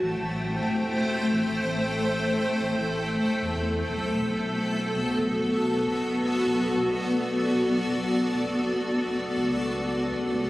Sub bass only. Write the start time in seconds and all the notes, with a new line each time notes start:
0.01 A1
0.19 A1
0.66 E1
1.30 A1
1.48 A1
1.63 A1
2.59 A1
2.77 A1
3.24 E1
3.42 E2
3.88 B1
4.21 B1
5.17 B1
5.35 B1
5.82 F#1
6.46 B1
6.65 B1
6.79 B1
7.75 B1
7.94 B1
8.40 F#1
8.58 F#1
9.04 F#1
9.37 C#2
10.34 C#2